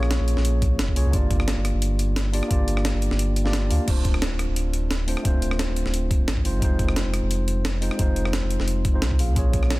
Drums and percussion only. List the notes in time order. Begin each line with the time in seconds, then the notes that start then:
0.03 cross-stick
0.11 snare, closed hi-hat
0.28 closed hi-hat
0.37 snare
0.45 closed hi-hat
0.62 kick, closed hi-hat
0.79 snare, closed hi-hat
0.88 kick
0.96 open hi-hat
1.13 kick, closed hi-hat
1.31 kick, closed hi-hat
1.40 cross-stick
1.48 snare, closed hi-hat
1.65 cross-stick, closed hi-hat
1.82 closed hi-hat
1.99 closed hi-hat
2.16 snare, closed hi-hat
2.34 open hi-hat
2.43 cross-stick
2.51 kick, closed hi-hat
2.68 closed hi-hat
2.77 cross-stick
2.85 snare, closed hi-hat
3.02 closed hi-hat
3.11 snare
3.19 closed hi-hat
3.36 closed hi-hat
3.46 snare
3.53 snare, closed hi-hat
3.71 open hi-hat
3.88 kick, closed hi-hat, crash
4.05 kick, closed hi-hat
4.14 cross-stick
4.22 snare, closed hi-hat
4.39 cross-stick, closed hi-hat
4.56 closed hi-hat
4.73 closed hi-hat
4.91 snare, closed hi-hat
5.08 open hi-hat
5.17 cross-stick
5.25 kick, closed hi-hat
5.42 closed hi-hat
5.51 cross-stick
5.59 snare, closed hi-hat
5.76 closed hi-hat
5.86 snare
5.94 closed hi-hat
6.11 kick, closed hi-hat
6.28 snare, closed hi-hat
6.37 kick
6.45 open hi-hat
6.62 kick, closed hi-hat
6.79 kick, closed hi-hat
6.88 cross-stick
6.96 snare, closed hi-hat
7.14 cross-stick, closed hi-hat
7.31 closed hi-hat
7.48 closed hi-hat
7.65 snare, closed hi-hat
7.82 open hi-hat
7.91 cross-stick
7.99 kick, closed hi-hat
8.16 closed hi-hat
8.25 cross-stick
8.33 snare, closed hi-hat
8.51 closed hi-hat
8.60 snare
8.68 closed hi-hat
8.85 kick, closed hi-hat
9.02 snare, closed hi-hat
9.11 kick
9.19 open hi-hat
9.36 kick, closed hi-hat
9.53 kick, closed hi-hat
9.63 cross-stick
9.71 snare, closed hi-hat